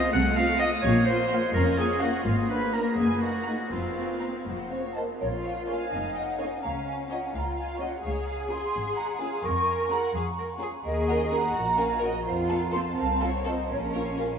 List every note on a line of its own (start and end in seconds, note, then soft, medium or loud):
0.00 0.12 C4 medium
0.00 0.12 D#5 loud
0.13 0.69 C2 medium
0.13 0.69 C3 medium
0.13 0.82 A3 medium
0.13 0.38 F#5 loud
0.13 0.22 F#6 medium
0.36 0.46 C4 medium
0.36 0.46 F4 medium
0.36 0.59 F5 loud
0.36 0.45 F6 medium
0.59 0.69 C4 medium
0.59 0.69 F4 medium
0.59 0.70 D#5 loud
0.59 0.78 F5 medium
0.59 0.83 D#6 medium
0.82 1.40 A#1 loud
0.82 1.40 A#2 loud
0.82 1.53 A#3 medium
0.82 1.07 C#5 loud
0.82 0.92 C#6 medium
1.06 1.16 A#3 medium
1.06 1.16 F4 medium
1.06 1.53 C5 loud
1.06 1.54 C6 medium
1.31 1.39 A#3 medium
1.31 1.40 F4 medium
1.31 1.49 F5 medium
1.53 2.11 F1 medium
1.53 2.11 F2 medium
1.53 2.24 C#4 medium
1.53 1.79 A#4 loud
1.53 1.64 A#5 medium
1.78 1.87 A#3 medium
1.78 1.86 F4 medium
1.78 2.02 G#4 loud
1.78 1.87 G#5 medium
2.00 2.10 A#3 medium
2.00 2.10 F4 soft
2.00 2.26 F#4 medium
2.00 2.19 F5 medium
2.00 2.25 F#5 medium
2.24 2.83 G#1 medium
2.24 2.82 G#2 medium
2.24 3.68 A#3 medium
2.24 2.49 F4 medium
2.24 2.33 F5 medium
2.49 2.58 A#3 soft
2.49 2.58 D4 soft
2.49 2.75 B4 medium
2.49 2.73 B5 medium
2.74 2.82 A#3 soft
2.74 2.82 D4 soft
2.74 2.96 A#4 medium
2.74 2.92 A#5 medium
2.74 2.98 A#5 medium
2.96 3.56 F#1 medium
2.96 3.55 F#2 medium
2.96 3.21 G#4 medium
2.96 3.22 G#5 medium
3.21 3.31 A#3 soft
3.21 3.31 D#4 soft
3.21 3.73 F#4 medium
3.21 3.70 F#5 medium
3.46 3.56 A#3 soft
3.46 3.56 D#4 soft
3.46 3.64 A#5 medium
3.71 4.31 F1 medium
3.71 4.31 F2 medium
3.71 4.81 C4 medium
3.71 4.46 F4 medium
3.71 4.45 F5 medium
3.96 4.05 A#3 soft
3.96 4.05 C4 soft
4.21 4.31 A#3 soft
4.21 4.31 C4 soft
4.21 4.39 A#5 soft
4.45 5.05 F1 soft
4.45 5.04 F2 medium
4.45 4.58 F3 soft
4.45 4.69 C5 soft
4.45 4.69 F#5 soft
4.70 4.82 C4 soft
4.70 4.96 C#5 medium
4.70 4.95 F5 medium
4.95 5.07 A#3 soft
4.95 5.04 C5 soft
4.95 5.01 D#5 medium
4.95 5.14 A5 soft
5.20 5.77 A#1 medium
5.20 5.88 F4 medium
5.20 5.29 A#4 soft
5.20 5.26 C#5 medium
5.44 5.52 C#5 medium
5.44 5.68 F5 medium
5.68 5.86 C#4 soft
5.68 5.86 A#4 soft
5.68 5.86 C#5 soft
5.68 6.15 F5 medium
5.68 6.15 G#5 medium
5.91 6.49 F1 medium
5.91 6.61 D#4 medium
6.15 6.23 D#5 medium
6.15 6.39 F#5 medium
6.39 6.58 C#4 medium
6.39 6.57 A#4 soft
6.39 6.47 C#5 medium
6.39 6.58 C#5 medium
6.39 6.46 F5 medium
6.62 7.19 C#2 medium
6.62 7.33 C#4 medium
6.62 6.86 F5 medium
6.62 6.70 A#5 medium
6.87 6.95 F5 medium
6.87 6.94 G#5 medium
7.10 7.28 C#4 medium
7.10 7.28 F4 soft
7.10 7.28 C#5 medium
7.10 7.18 D#5 medium
7.10 7.33 F#5 medium
7.34 7.90 C#2 medium
7.34 8.04 F4 soft
7.34 7.43 F5 soft
7.34 7.58 A#5 medium
7.57 7.80 F5 medium
7.57 7.65 G#5 medium
7.80 7.98 C#4 soft
7.80 7.99 F4 soft
7.80 7.98 C#5 medium
7.80 7.88 D#5 medium
7.80 8.03 F#5 medium
8.03 8.59 C#2 medium
8.03 9.41 G#4 medium
8.03 8.26 C#5 medium
8.03 8.10 F5 medium
8.27 8.35 F5 medium
8.27 8.50 G#5 medium
8.50 8.68 C#4 medium
8.50 8.68 F4 medium
8.50 8.68 G#4 soft
8.50 8.97 G#5 medium
8.50 8.97 C6 medium
8.74 9.29 G#1 medium
8.96 9.20 F#5 medium
8.96 9.20 A#5 medium
9.20 9.38 C#4 soft
9.20 9.38 F4 soft
9.20 9.38 G#4 medium
9.20 9.43 F5 medium
9.20 9.44 G#5 medium
9.43 10.00 F2 medium
9.43 10.15 A#4 medium
9.43 9.91 G#5 medium
9.43 9.90 C#6 medium
9.90 10.09 C#4 medium
9.90 10.08 F4 medium
9.90 10.09 G#4 medium
9.90 10.14 F#5 medium
9.90 9.96 A#5 medium
10.14 10.70 F2 medium
10.14 10.23 G#4 medium
10.14 10.24 F5 soft
10.14 10.20 G#5 medium
10.38 10.46 A#4 medium
10.60 10.78 C#4 medium
10.60 10.78 F4 soft
10.60 10.70 G#4 medium
10.60 10.79 G#4 medium
10.84 11.44 D#2 medium
10.84 11.54 G#4 medium
10.84 11.07 A#4 medium
10.84 11.06 D#5 medium
11.06 11.16 C#4 soft
11.06 11.16 F#4 soft
11.06 11.16 A#4 soft
11.06 11.32 D#5 medium
11.06 11.12 F#5 medium
11.29 11.39 C#4 soft
11.29 11.39 F#4 soft
11.29 11.38 A#4 soft
11.29 11.78 F#5 medium
11.29 11.77 A#5 medium
11.55 12.14 A#1 medium
11.55 12.26 F#4 medium
11.77 11.86 C#4 soft
11.77 11.86 F#4 soft
11.77 11.85 A#4 soft
11.77 12.03 F5 medium
11.77 12.02 G#5 medium
12.00 12.10 C#4 soft
12.00 12.10 F#4 soft
12.00 12.08 A#4 soft
12.00 12.26 D#5 medium
12.00 12.08 F#5 medium
12.26 12.86 F2 medium
12.26 12.97 F4 medium
12.26 12.34 C5 medium
12.26 12.32 F5 medium
12.48 12.57 C4 soft
12.48 12.57 F4 soft
12.48 12.56 A4 soft
12.48 12.59 F5 medium
12.48 12.54 A5 medium
12.72 12.82 C4 soft
12.72 12.82 F4 soft
12.72 12.80 A4 soft
12.72 12.98 A5 medium
12.72 12.79 C6 medium
12.98 13.58 C2 medium
12.98 13.69 C4 medium
12.98 13.22 F5 medium
12.98 13.21 A5 medium
13.21 13.30 C4 soft
13.21 13.30 F4 soft
13.21 13.29 A4 soft
13.21 13.47 C#5 medium
13.21 13.28 F5 medium
13.45 13.53 C4 soft
13.45 13.53 F4 soft
13.45 13.53 A4 medium
13.45 13.71 C5 medium
13.45 13.70 D#5 medium
13.70 14.30 A#1 medium
13.70 14.39 C#4 medium
13.70 13.94 A#4 medium
13.70 13.77 C#5 medium
13.93 14.02 C#4 soft
13.93 14.02 F4 soft
13.93 14.01 A#4 soft
13.93 14.18 C#5 medium
13.93 14.18 F5 medium
14.17 14.26 C#4 soft
14.17 14.26 F4 soft
14.17 14.25 A#4 soft
14.17 14.27 F5 soft
14.17 14.24 G#5 medium